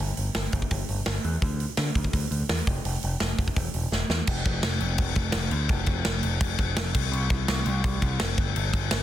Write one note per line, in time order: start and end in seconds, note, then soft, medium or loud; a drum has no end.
0.00 0.11 G1 medium
0.17 0.29 G1 medium
0.17 open hi-hat medium
0.35 0.47 G1 medium
0.35 snare loud
0.35 open hi-hat medium
0.52 0.65 G1 medium
0.52 kick medium
0.52 open hi-hat medium
0.62 kick medium
0.71 0.83 G1 loud
0.71 kick loud
0.71 open hi-hat medium
0.89 1.00 G1 medium
0.89 open hi-hat medium
1.06 1.18 G1 medium
1.06 snare loud
1.06 open hi-hat medium
1.24 1.36 E2 medium
1.24 open hi-hat medium
1.42 1.65 D2 medium
1.42 kick loud
1.42 open hi-hat medium
1.60 open hi-hat soft
1.77 1.89 D3 medium
1.77 snare loud
1.77 open hi-hat medium
1.95 2.07 D2 medium
1.95 kick medium
1.95 open hi-hat medium
2.04 kick medium
2.13 2.25 D2 medium
2.13 kick loud
2.13 open hi-hat medium
2.31 2.42 D2 medium
2.31 open hi-hat medium
2.49 2.61 E2 medium
2.49 snare loud
2.49 open hi-hat medium
2.67 2.78 F1 medium
2.67 kick loud
2.67 open hi-hat medium
2.85 2.96 F1 medium
2.85 open hi-hat medium
3.03 3.15 F1 medium
3.03 open hi-hat medium
3.20 3.32 F1 medium
3.20 snare loud
3.20 open hi-hat medium
3.38 3.49 F1 medium
3.38 kick medium
3.38 open hi-hat medium
3.48 kick medium
3.56 3.68 E1 medium
3.56 kick loud
3.56 open hi-hat medium
3.74 3.86 E1 medium
3.74 open hi-hat medium
3.92 4.03 E1 medium
3.92 snare medium
4.10 4.21 E2 medium
4.10 snare medium
4.27 4.43 F1 medium
4.27 kick medium
4.27 crash medium
4.45 4.60 F1 medium
4.45 kick medium
4.45 crash medium
4.63 4.78 F1 medium
4.63 snare loud
4.63 crash medium
4.80 4.96 F1 medium
4.80 crash medium
4.98 5.14 F1 medium
4.98 kick loud
4.98 crash medium
5.15 5.31 F1 medium
5.15 kick medium
5.15 crash medium
5.32 5.49 F1 medium
5.32 snare loud
5.32 crash medium
5.51 5.67 D2 medium
5.51 crash medium
5.69 5.85 F1 loud
5.69 kick loud
5.69 crash medium
5.86 6.02 F1 medium
5.86 kick medium
5.86 crash medium
6.05 6.21 F1 medium
6.05 snare loud
6.05 crash medium
6.23 6.38 F1 medium
6.23 crash medium
6.41 6.56 F1 medium
6.41 kick loud
6.41 crash medium
6.58 6.74 F1 medium
6.58 kick medium
6.58 crash medium
6.76 6.92 F1 loud
6.76 snare loud
6.76 crash medium
6.95 7.10 C2 medium
6.95 kick loud
6.95 crash loud
7.12 7.27 C2 loud
7.12 crash medium
7.30 7.45 C2 medium
7.30 kick medium
7.30 crash medium
7.48 7.63 C2 loud
7.48 snare loud
7.48 crash medium
7.66 7.81 C2 medium
7.66 crash medium
7.84 7.99 C2 medium
7.84 kick loud
7.84 crash medium
8.02 8.17 C2 medium
8.02 kick medium
8.02 crash medium
8.20 8.35 F1 medium
8.20 snare loud
8.20 crash medium
8.38 8.53 G1 medium
8.38 kick loud
8.38 crash medium
8.56 8.71 G1 medium
8.56 crash medium
8.73 8.88 G1 medium
8.73 kick medium
8.73 crash medium
8.91 9.03 G1 loud
8.91 snare loud
8.91 crash loud